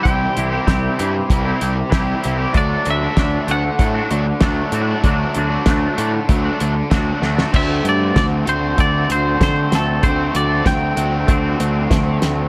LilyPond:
<<
  \new Staff \with { instrumentName = "Clean electric guitar" } { \time 4/4 \key d \mixolydian \tempo 4 = 96 g''2 r2 | d''8 e''4 fis''2~ fis''8~ | fis''2. r4 | e''8 d''8 d''8 c''8 d''8 c''8 c''8 a'8 |
c''8 d''8 g''2~ g''8 r8 | }
  \new Staff \with { instrumentName = "Clean electric guitar" } { \time 4/4 \key d \mixolydian <e c' e' g'>8 <e c' e' g'>16 <c' e' g'>16 <e c' e' g'>8 <e c' e' g'>8. <c' e' g'>8. <e c' e' g'>8 <e c' e' g'>16 <c' e' g'>16 | <a d' fis'>8 <a d' fis'>16 <d' fis'>16 <a d' fis'>8 <a d' fis'>8. <d' fis'>8. <a d' fis'>8 <a d' fis'>16 <d' fis'>16 | <a d' fis'>8 <a d' fis'>16 <d' fis'>16 <a d' fis'>8 <a d' fis'>8. <d' fis'>8. <a d' fis'>8 <a d' fis'>16 <d' fis'>16 | <a c'>2 <a c'>2 |
<a c'>2 <a c'>2 | }
  \new Staff \with { instrumentName = "Overdriven electric guitar" } { \time 4/4 \key d \mixolydian <c g c' e'>8. <g c' e'>8. <c g c' e'>8 <c g c' e'>16 <g c' e'>16 <c g c' e'>8 <c g c' e'>8 <c g c' e'>16 <g c' e'>16 | <d fis a d'>8. <fis a d'>8. <d fis a d'>8 <d fis a d'>16 <fis a d'>16 <d fis a d'>8 <d fis a d'>8 <d fis a d'>16 <fis a d'>16 | <d fis a d'>8. <fis a d'>8. <d fis a d'>8 <d fis a d'>16 <fis a d'>16 <d fis a d'>8 <d fis a d'>8 <d fis a d'>16 <fis a d'>16 | <d a c' fis'>4. <d a c' fis'>2~ <d a c' fis'>8 |
<d a c' fis'>4. <d a c' fis'>2~ <d a c' fis'>8 | }
  \new Staff \with { instrumentName = "Picked electric bass" } { \clef bass \time 4/4 \key d \mixolydian c,8 c,8 c,8 g,8 c,8 c,8 c,8 c,8 | d,8 d,8 d,8 d,8 a,8 d,8 d,8 a,8 | d,8 d,8 d,8 a,8 d,8 d,8 d,8 d,8 | d,8 g,8 d,8 d,8 d,8 d,8 d8 d,8 |
d,8 d,8 d,8 d,8 d,8 d,8 d,8 d,8 | }
  \new DrumStaff \with { instrumentName = "Drums" } \drummode { \time 4/4 <hh bd>8 hh8 <hh bd sn>8 hh8 <hh bd>8 hh8 <hh bd sn>8 hh8 | <hh bd>8 hh8 <hh bd sn>8 hh8 <hh bd>8 hh8 <hh bd sn>8 hh8 | <hh bd>8 hh8 <hh bd sn>8 hh8 <hh bd>8 hh8 <hh bd sn>8 sn16 sn16 | <cymc bd>8 hh8 <hh bd sn>8 hh8 <hh bd>8 hh8 <hh bd sn>8 <hh sn>8 |
<hh bd>8 hh8 <hh bd sn>8 hh8 <hh bd>8 hh8 <hh bd sn>8 <hh sn>8 | }
>>